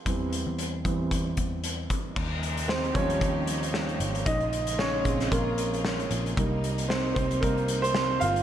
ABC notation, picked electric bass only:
X:1
M:4/4
L:1/16
Q:"Swing 16ths" 1/4=114
K:Ebmix
V:1 name="Picked electric bass" clef=bass
=E,,3 E,,3 E,,4 E,,4 z2 | E,,6 E,,2 E,,6 A,,,2 | B,,,6 B,,,2 B,,,6 B,,,2 | C,,6 C,,2 C,,6 G,,,2 |]